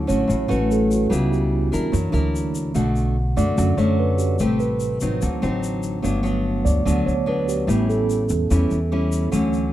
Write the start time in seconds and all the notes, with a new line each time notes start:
Already playing: D3 F#3 C#4 E4
0.07 A1 A3 C#4 F#4 C#5, shaker
0.28 A1 A2, shaker
0.48 A1 A3 C#4 F#4 B4, shaker
0.71 A4, shaker
0.90 F#4, shaker
1.10 C#2 C#3 G3 B3 E4, shaker
1.32 G4, shaker
1.72 E2 D4 E4 A#4, shaker
1.92 F#2 E3 F#3 A#3 D4, shaker
2.12 D2 D4 E4 A#4, shaker
2.36 shaker
2.55 shaker
2.74 B1 B2 D3 A3 D4 F#4, shaker
2.96 shaker
3.36 F#2 A3 D4 F#4 D5, shaker
3.56 F#2 D3 F#3 A3 C#4, shaker
3.77 F#2 A3 D4 F#4 C#5, shaker
3.99 B4
4.18 G4, shaker
4.38 A1 C3 G3 A3 C4 G4 B4, shaker
4.60 B4, shaker
4.80 shaker
5.01 A1 F#3 C4 D#4, shaker
5.21 D2 D3 F#3 C4, shaker
5.42 A1 F#3 C4 D#4, shaker
5.63 shaker
5.83 shaker
6.02 G1 G2 F#3 A3 B3 D4, shaker
6.23 F#3 B3 D4, shaker
6.65 D2 D5, shaker
6.85 D2 D3 F#3 A3 B3 D4, shaker
7.06 D2 C#5, shaker
7.26 F#3 B3 D4 B4
7.49 G4, shaker
7.67 A1 A2 G3 B3 C#4 E4, shaker
7.89 A4, shaker
8.10 shaker
8.29 E2, shaker
8.50 E2 E3 G3 C#4 E4, shaker
8.71 E2, shaker
8.92 G3 C#4 E4
9.12 shaker
9.31 D2 D3 E3 F#3 A3 C#4, shaker
9.53 shaker